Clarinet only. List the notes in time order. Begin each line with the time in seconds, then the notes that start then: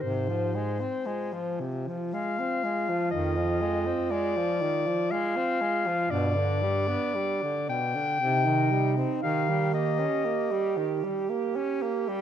0.01 C5
2.13 F5
3.11 D#5
4.11 D5
5.11 F5
6.11 D5
7.70 G5
9.22 F5
9.74 D#5